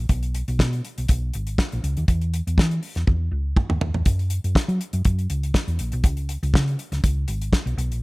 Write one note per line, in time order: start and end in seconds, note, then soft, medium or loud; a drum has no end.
0.09 0.41 B1 loud
0.09 kick loud
0.09 closed hi-hat medium
0.23 closed hi-hat soft
0.34 closed hi-hat medium
0.48 0.58 B1 medium
0.48 closed hi-hat soft
0.59 0.80 B2 loud
0.59 kick loud
0.59 snare loud
0.73 closed hi-hat soft
0.85 closed hi-hat medium
0.98 1.07 B1 medium
0.98 closed hi-hat soft
1.08 1.30 B1 medium
1.08 kick loud
1.08 closed hi-hat medium
1.34 1.55 G#1 medium
1.34 closed hi-hat medium
1.47 closed hi-hat soft
1.58 kick loud
1.58 snare loud
1.72 1.82 A#1 medium
1.72 closed hi-hat soft
1.84 1.94 C#2 medium
1.84 closed hi-hat medium
1.97 2.07 D#2 medium
1.97 closed hi-hat soft
2.08 2.40 E2 loud
2.08 kick loud
2.08 closed hi-hat medium
2.21 closed hi-hat soft
2.34 closed hi-hat medium
2.47 2.56 E2 medium
2.47 closed hi-hat soft
2.58 2.78 E3 loud
2.58 kick loud
2.58 snare loud
2.71 closed hi-hat soft
2.83 open hi-hat medium
2.95 3.05 E2 medium
2.95 snare soft
2.95 closed hi-hat soft
3.07 3.28 E2 medium
3.07 kick loud
3.07 high tom medium
3.31 3.52 C#2 medium
3.56 kick loud
3.56 mid tom medium
3.69 3.79 D#2 medium
3.69 mid tom medium
3.81 3.92 D#2 medium
3.81 floor tom loud
3.94 4.04 E2 medium
3.94 floor tom medium
4.05 4.37 F#2 loud
4.05 kick loud
4.05 closed hi-hat medium
4.19 closed hi-hat soft
4.30 closed hi-hat medium
4.44 4.54 F#2 medium
4.44 closed hi-hat soft
4.55 kick loud
4.55 snare loud
4.68 4.78 F#3 medium
4.68 closed hi-hat soft
4.81 closed hi-hat medium
4.93 5.03 F#2 medium
4.93 closed hi-hat soft
5.05 5.26 F#2 medium
5.05 kick loud
5.05 closed hi-hat medium
5.19 closed hi-hat soft
5.30 5.51 C#2 medium
5.30 closed hi-hat medium
5.43 closed hi-hat soft
5.54 kick loud
5.54 snare loud
5.68 5.77 E2 medium
5.68 closed hi-hat soft
5.79 5.91 A#1 medium
5.79 closed hi-hat medium
5.92 6.04 B1 medium
5.92 closed hi-hat soft
6.04 6.36 C#2 loud
6.04 kick loud
6.04 closed hi-hat medium
6.17 closed hi-hat soft
6.29 closed hi-hat medium
6.43 6.52 C#2 medium
6.43 closed hi-hat soft
6.54 6.74 C#3 loud
6.54 kick loud
6.54 snare loud
6.68 closed hi-hat soft
6.79 closed hi-hat medium
6.92 7.01 C#2 medium
6.92 snare soft
6.92 closed hi-hat soft
7.04 7.24 C#2 medium
7.04 kick loud
7.04 closed hi-hat medium
7.28 7.49 G#1 medium
7.28 closed hi-hat medium
7.42 closed hi-hat soft
7.53 kick loud
7.53 snare loud
7.66 7.76 B1 medium
7.66 closed hi-hat soft
7.77 7.91 B1 loud
7.77 closed hi-hat medium
7.91 8.03 A#1 medium
7.91 closed hi-hat soft